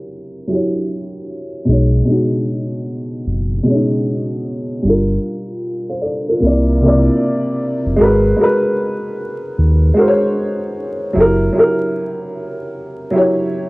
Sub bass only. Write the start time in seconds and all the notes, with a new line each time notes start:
1.68 B1
3.26 F#1
4.84 G1
6.42 C2
7.86 F#1
8.00 G#1
9.58 D#2
11.16 F#1